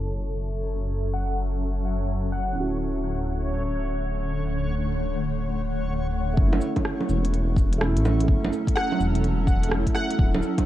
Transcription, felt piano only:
Already playing: C#4 E4 A4
2.52 C#4 E4
2.60 F#4
6.33 A3 C#4
6.41 E4
7.78 A3 C#4
7.82 E4
8.23 A3
8.28 C#4
8.32 E4
9.69 A3 C#4
9.73 E4
10.15 F#3 C#4
10.23 E4

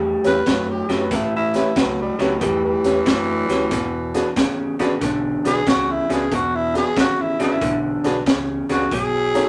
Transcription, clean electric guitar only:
Already playing: A2 G3
0.46 A2 F#3
0.89 A2 F#3
1.11 A2 E3
1.76 A2 F#3
2.19 A2 F#3
2.41 A2 G3
3.06 A2 F#3
3.49 A2 F#3
3.71 E2 B2
4.36 E2 C#3
4.79 E2 C#3
5.01 E2 D3
5.67 E2 C#3
6.10 E2 C#3
6.32 E2 B2
6.97 E2 C#3
7.39 E2 C#3
7.61 E2 D3
8.27 E2 C#3
8.69 E2 C#3
8.92 B2 F#3

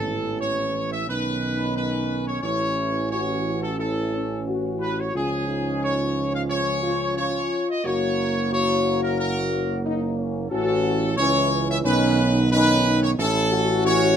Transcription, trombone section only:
Already playing: E3 C#4
1.07 D#3
2.43 E3
5.15 F3 C#4
7.84 F#3 A#3
10.51 E3 C#4
11.18 E3 C#4
11.84 D#3 C#4
12.51 D#3 C#4
13.19 E3 C#4
13.85 E3 C#4

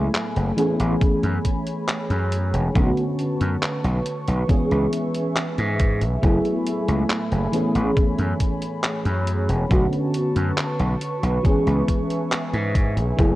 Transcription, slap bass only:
0.36 F#1
0.80 A1
1.23 F#2
2.10 F#2
2.54 E1
2.75 B1
3.41 F#2
3.84 B1
4.28 B1
4.71 C#2
5.58 G#2
6.01 B1
6.23 F#1
6.88 C#2
7.32 F#1
7.75 A1
8.19 F#2
9.06 F#2
9.49 E1
9.71 B1
10.36 F#2
10.80 B1
11.23 B1
11.67 C#2
12.53 G#2
12.97 B1
13.19 F#1

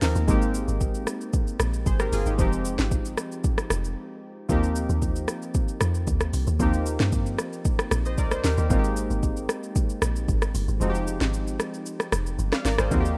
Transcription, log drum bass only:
0.02 D#2
0.16 D#2
0.28 G#1
0.68 G#1
1.60 A#1
1.86 G#1
2.12 G1
2.26 G#1
2.39 F1
2.79 G#1
3.70 F1
4.49 D#2
4.89 D#2
5.81 F2
6.07 D#2
6.33 C2
6.47 D#2
6.60 D#2
7.00 G2
7.91 A#1
8.18 C2
8.44 D#2
8.58 D#2
8.70 G#1
9.10 G#1
10.02 A#1
10.28 G#1
10.55 G1
10.68 G#1
10.81 F1
11.21 G#1
12.13 F1
12.39 G1
12.65 G#1
12.79 G#1
12.91 D#2

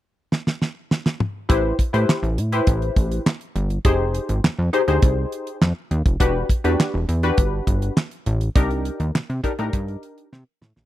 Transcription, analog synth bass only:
1.50 A1
1.94 A2
2.23 A1
2.38 A2
2.67 A1
2.96 A1
3.56 G1
3.85 F1
4.29 G#1
4.44 F2
4.59 F2
4.88 D2
5.03 C2
5.62 F2
5.91 D#2
6.06 F1
6.20 E1
6.65 E2
6.94 E1
7.09 E2
7.38 G1
7.67 G1
8.26 A1
8.56 C2
9.00 D#2
9.15 C3
9.30 C3
9.59 A2
9.73 G2
10.33 C3
10.62 A2
10.76 A#1

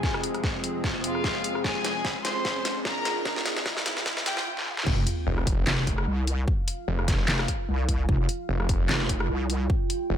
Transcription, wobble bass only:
4.87 F1
5.67 F1
5.87 F1
6.07 C2
7.28 F1
7.69 C2
8.09 F1
8.89 F1
9.09 F1
9.30 C2

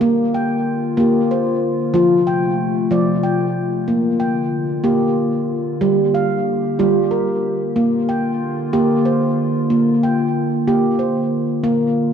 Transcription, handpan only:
Already playing: A#4
0.01 A#3
0.34 G5
0.97 A#3 G4
1.31 C5
1.94 F3 F4
2.27 G5
2.91 F3 D5
3.23 G5
3.88 A#3
4.20 G5
4.84 A#3 G4
5.81 G3
6.14 F5
6.79 G3 F4
7.11 A#4
7.76 A#3
8.09 G5
8.73 A#3 G4
9.05 C5
9.70 A#3
10.03 G5
10.68 A#3 G4
10.99 C5
11.64 A#3

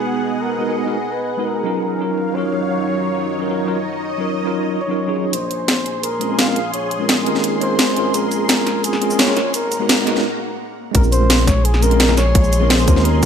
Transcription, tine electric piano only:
Already playing: G#3 B3 D#4 F#4 G#4
0.58 G#3 B3 D#4 F#4 A#4
0.67 G#3 B3 D#4 F#4 A#4
0.84 G#3 B3 D#4 F#4 A#4
1.37 G#3 B3 D#4 F#4 A#4
1.63 F#3 C#4 D#4 F4 A#4
1.99 F#3 C#4 D#4 F4 A#4
2.32 F#3 C#4 D#4
2.37 F4 A#4
3.39 F#3 C#4 D#4 F4 A#4
3.48 F#3 C#4 D#4 F4 A#4
3.65 F#3 C#4 D#4 F4 A#4
4.18 F#3 C#4 D#4 F4 A#4
4.44 F#3 C#4 D#4 F4 A#4
4.88 F#3 C#4 D#4 F4 A#4
5.06 F#3 C#4 D#4 F4 G#4
6.20 G#3 C4 C#4 F4 A#4
6.29 G#3 C4 C#4 F4 A#4
6.46 G#3 C4 C#4 F4 A#4
6.98 G#3 C4 C#4 F4 A#4
7.24 G#3 C4 C#4 F4 A#4
7.60 G#3 C4 C#4 F4 A#4
7.93 G#3 C4 C#4
7.98 F4 A#4
9.00 G#3 C4 C#4 F4 A#4
9.09 G#3 C4 C#4 F4 A#4
9.27 G#3 C4 C#4 F4 A#4
9.79 G#3 B3 D#4 F#4 A#4
10.05 G#3 B3 D#4 F#4 A#4
10.92 G#3 C4 C#4
10.96 F4 A#4
11.81 G#3 C4 C#4 F4 A#4
11.90 G#3 C4 C#4 F4 A#4
12.07 G#3 C4 C#4 F4 A#4
12.60 G#3 C4 C#4 F4 A#4
12.86 G#3 C4 C#4 F4 A#4

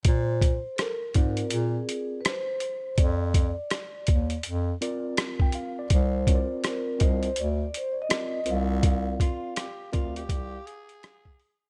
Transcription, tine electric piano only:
1.15 C4 F4 A#4 D5
4.81 C4 F4 A#4 D5
5.42 G5
5.55 F5
5.79 D5
6.28 C4 F4 A#4 C#5
6.35 D5
6.99 C4 F4 A#4 D#5
8.09 C4 F4 A#4 D5
8.45 C4 F4 A#4 C5
8.53 D5
9.92 C4 F4 A#4 D5

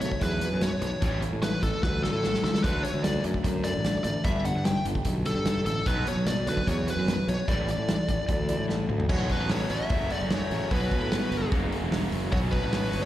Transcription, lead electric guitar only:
0.01 C#5
0.22 B4
0.62 C#5
0.82 C#5
1.43 B4
1.63 A4
1.84 B4
2.03 A4
2.44 A4
2.64 B4
2.83 C#5
3.04 D5
3.64 D5
4.04 D5
4.25 E5
4.45 F#5
4.66 G5
5.26 A4
5.66 A4
5.87 B4
6.08 C#5
6.27 D5
6.49 B4
6.68 C#5
6.90 B4
7.29 C#5
7.49 D5
9.10 C#5
9.32 B4
9.51 C#5
9.71 E5
10.12 D5
10.32 C#5
10.72 B4
12.32 C#5
12.52 B4

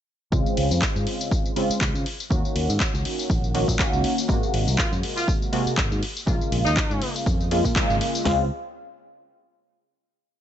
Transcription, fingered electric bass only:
0.32 C#2
0.58 C#2
0.71 F2
0.96 G#2
1.70 muted fingered electric bass stroke
1.81 C#2
1.94 C#3
2.31 D#2
2.56 D#2
2.69 G#2
2.94 C#2
3.30 A#1
3.68 A#1
3.93 C#2
4.29 G#1
4.54 G#1
4.67 C2
4.92 F#2
5.66 muted fingered electric bass stroke
5.78 G#1
5.91 G#2
6.27 A#1
6.52 A#1
6.66 D#2
6.90 G#2
7.26 F2
7.64 A#2
7.89 G#1
8.26 C#2

